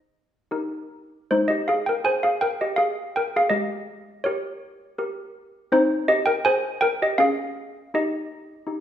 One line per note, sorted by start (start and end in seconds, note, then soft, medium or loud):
0.00 0.47 D#4 medium
0.00 0.47 G#4 soft
0.00 0.47 C5 soft
0.00 0.86 D#5 medium
0.51 1.28 D#4 soft
0.51 1.27 G4 soft
0.51 1.28 A#4 soft
1.31 2.03 G#3 medium
1.31 1.49 D#4 medium
1.31 1.49 C5 medium
1.48 1.67 G4 medium
1.48 1.67 D#5 medium
1.68 1.86 G#4 medium
1.68 1.86 F5 medium
1.86 2.05 A#4 medium
1.86 2.05 G5 medium
2.04 2.23 G#4 soft
2.04 2.22 C5 medium
2.04 2.23 G#5 medium
2.23 2.41 G#4 medium
2.23 2.41 F5 medium
2.41 2.59 A#4 medium
2.41 2.59 G5 medium
2.61 2.78 G4 medium
2.61 2.79 D#5 medium
2.76 3.12 G#4 medium
2.76 3.12 F5 medium
3.16 3.33 A#4 medium
3.16 3.34 G5 medium
3.36 3.52 G#4 medium
3.36 3.53 F5 medium
3.50 4.22 G#3 medium
3.50 4.21 G4 medium
3.50 4.21 D#5 medium
4.24 4.98 G4 medium
4.24 4.95 A#4 soft
4.24 5.31 C#5 medium
4.98 5.68 G4 medium
4.98 5.68 A#4 medium
5.72 6.42 C4 medium
5.72 6.06 D#4 medium
5.72 6.07 C5 loud
6.08 6.25 G4 medium
6.08 6.26 D#5 loud
6.26 6.43 A#4 medium
6.26 6.44 G5 loud
6.45 7.14 G#4 medium
6.45 6.79 C5 medium
6.45 6.80 G#5 loud
6.81 6.99 A#4 medium
6.81 6.99 G5 loud
7.02 7.18 G4 medium
7.02 7.19 D#5 medium
7.18 7.90 C#4 medium
7.18 7.89 G#4 medium
7.18 7.89 F5 loud
7.94 8.65 D#4 medium
7.94 8.66 G4 medium
7.94 8.80 D#5 medium
8.67 8.80 D#4 soft
8.67 8.80 G4 soft